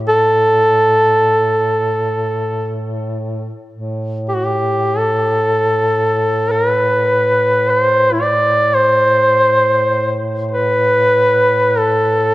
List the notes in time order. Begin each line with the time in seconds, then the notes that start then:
Already playing: A2
0.08 A4
3.72 A2
4.29 G4
4.35 F#4
4.45 G4
4.98 A4
6.51 A#4
6.70 B4
7.70 B4
7.81 C5
8.13 E4
8.21 D5
8.74 C5
10.51 B4
11.78 A4